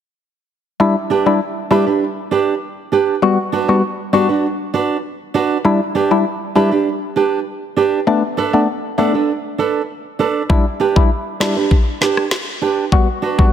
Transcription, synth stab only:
0.80 0.95 G3 medium
0.80 0.96 D4 medium
0.80 0.96 E4 loud
1.26 1.40 G3 medium
1.26 1.40 D4 medium
1.26 1.40 E4 medium
1.71 1.86 G3 medium
1.71 1.86 D4 medium
1.71 1.87 E4 medium
3.22 3.38 G3 medium
3.22 3.38 B3 medium
3.22 3.38 F#4 loud
3.69 3.82 G3 medium
3.69 3.83 B3 medium
3.69 3.83 F#4 medium
4.13 4.29 G3 medium
4.13 4.29 B3 medium
4.13 4.29 F#4 medium
5.65 5.80 G3 medium
5.65 5.80 D4 medium
5.65 5.81 E4 loud
6.11 6.25 G3 medium
6.11 6.25 D4 medium
6.11 6.25 E4 medium
6.56 6.71 G3 medium
6.56 6.71 D4 medium
6.56 6.71 E4 medium
8.07 8.23 A3 medium
8.07 8.23 B3 medium
8.07 8.23 D4 loud
8.53 8.67 A3 medium
8.53 8.67 B3 medium
8.53 8.68 D4 medium
8.98 9.14 A3 medium
8.98 9.14 B3 medium
8.98 9.14 D4 medium
10.50 10.65 G3 medium
10.50 10.65 D4 medium
10.50 10.65 E4 loud
10.96 11.10 G3 medium
10.96 11.10 D4 medium
10.96 11.10 E4 medium
11.40 11.56 G3 medium
11.40 11.56 D4 medium
11.40 11.56 E4 medium
12.92 13.08 G3 medium
12.92 13.08 B3 medium
12.92 13.08 F#4 loud
13.38 13.52 G3 medium
13.38 13.52 B3 medium
13.38 13.52 F#4 medium

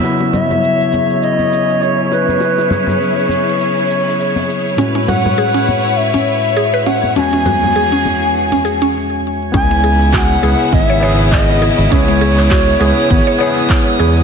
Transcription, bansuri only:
0.33 1.18 E5 loud
1.22 1.84 D#5 medium
1.82 2.11 C#5 medium
2.11 3.26 B4 medium
5.08 5.99 F#5 medium
5.97 6.88 E5 loud
6.86 7.16 F#5 medium
7.17 8.91 G#5 loud
7.17 7.21 A5 loud
9.55 10.15 G#5 loud
10.15 10.75 F#5 loud
10.15 10.19 G#5 medium
10.74 11.34 E5 loud
11.33 11.94 D#5 medium
11.92 14.00 C#5 loud

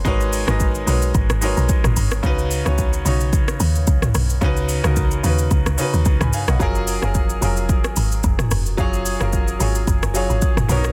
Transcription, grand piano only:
0.00 0.05 G#3 medium
0.00 0.05 D#4 medium
0.00 0.06 F#4 medium
0.00 0.07 A#4 medium
0.00 0.07 B4 medium
0.00 0.08 C#5 medium
0.00 0.50 D#5 medium
0.05 0.38 G#3 loud
0.05 0.39 D#4 loud
0.05 0.39 F#4 loud
0.05 0.39 A#4 loud
0.05 0.40 B4 loud
0.05 0.40 C#5 loud
0.47 0.80 G#3 medium
0.47 0.80 D#4 medium
0.47 0.80 F#4 medium
0.47 0.80 A#4 medium
0.47 0.81 B4 medium
0.47 0.81 D#5 medium
0.86 1.32 G#3 medium
0.86 1.32 D#4 medium
0.86 1.32 F#4 medium
0.86 1.33 A#4 medium
0.86 1.33 B4 medium
0.86 1.33 C#5 medium
1.41 2.08 G#3 medium
1.41 2.08 D#4 medium
1.41 2.09 F#4 medium
1.41 2.09 A#4 medium
1.41 2.09 B4 medium
1.41 2.10 C#5 loud
2.23 2.57 C#3 loud
2.23 2.57 C#4 loud
2.23 2.57 D#4 loud
2.23 2.58 F#4 loud
2.23 2.58 B4 loud
2.65 2.98 C#3 medium
2.65 2.98 C#4 medium
2.65 2.99 D#4 medium
2.65 2.99 F#4 medium
2.65 2.99 C#5 medium
3.05 3.93 C#3 medium
3.05 3.93 C#4 medium
3.05 3.94 D#4 medium
3.05 3.94 F#4 medium
3.05 3.95 C#5 medium
4.41 4.75 C#3 loud
4.41 4.75 C#4 loud
4.41 4.76 D#4 loud
4.41 4.76 F#4 loud
4.41 4.76 B4 loud
4.83 5.16 C#3 medium
4.83 5.16 C#4 medium
4.83 5.17 D#4 medium
4.83 5.17 F#4 medium
4.83 5.18 A#4 medium
5.23 5.68 C#3 medium
5.23 5.69 C#4 medium
5.23 5.69 D#4 medium
5.23 5.69 F#4 medium
5.23 5.70 B4 medium
5.78 6.44 C#3 medium
5.78 6.45 C#4 medium
5.78 6.45 D#4 medium
5.78 6.46 F#4 medium
5.78 6.46 B4 loud
6.21 6.32 G#5 medium
6.21 6.33 B5 medium
6.34 6.48 F5 medium
6.34 6.48 G#5 medium
6.49 6.74 D#5 medium
6.49 6.74 F#5 medium
6.59 6.93 F#3 loud
6.59 6.93 C#4 loud
6.59 6.94 F4 loud
6.59 6.94 G#4 loud
6.59 6.95 A#4 loud
7.02 7.34 F#3 medium
7.02 7.35 C#4 medium
7.02 7.35 F4 medium
7.02 7.35 G#4 medium
7.02 7.36 A#4 medium
7.41 8.29 F#3 medium
7.41 8.30 C#4 medium
7.41 8.30 F4 medium
7.41 8.31 G#4 medium
7.41 8.31 A#4 medium
8.77 9.11 F#3 loud
8.77 9.11 C#4 loud
8.77 9.12 F4 loud
8.77 9.12 G#4 loud
8.77 9.13 C#5 loud
9.20 9.52 F#3 medium
9.20 9.53 C#4 medium
9.20 9.53 F4 medium
9.20 9.54 G#4 medium
9.20 9.54 A#4 medium
9.59 10.04 F#3 medium
9.59 10.05 C#4 medium
9.59 10.05 F4 medium
9.59 10.06 G#4 medium
9.59 10.06 C#5 medium
10.14 10.69 F#3 medium
10.14 10.68 C#4 medium
10.14 10.70 F4 medium
10.14 10.70 G#4 medium
10.14 10.70 C#5 loud
10.68 10.92 B2 medium
10.68 10.92 B3 medium
10.68 10.77 C#4 medium
10.68 10.92 A#4 medium
10.68 10.92 C#5 loud
10.76 10.92 D#4 medium

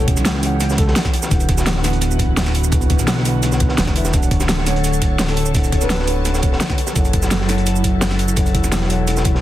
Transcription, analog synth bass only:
0.00 0.18 E1 loud
0.17 0.95 C#2 loud
1.31 2.71 D1 loud
2.72 3.00 D1 loud
2.99 3.42 B1 loud
3.43 3.77 B1 medium
3.78 4.12 E1 loud
4.14 5.53 D1 loud
5.55 5.80 D1 loud
5.82 6.59 D1 loud
6.96 8.36 F#1 loud
8.37 8.65 F#1 loud
8.64 9.41 E1 loud

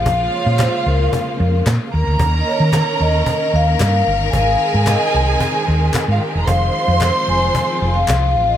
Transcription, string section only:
0.00 1.89 F3 medium
0.00 1.89 G#3 medium
0.00 1.89 F4 medium
0.05 1.91 C#3 medium
0.05 4.29 A#3 medium
1.92 8.57 D#3 medium
1.92 4.31 C#4 medium
1.92 6.43 A#4 loud
4.33 8.57 G#3 medium
4.33 6.45 C4 medium
6.48 8.57 F3 medium
6.48 8.57 C4 medium
6.48 8.57 F4 medium

